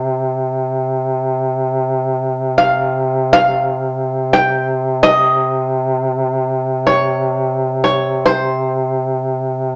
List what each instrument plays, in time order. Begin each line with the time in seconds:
Already playing: duduk C3, five-string banjo D#5
2.58 five-string banjo F5
3.33 five-string banjo F5
4.33 five-string banjo G5
5.03 five-string banjo D#5
6.87 five-string banjo C#5
7.84 five-string banjo C#5
8.26 five-string banjo C5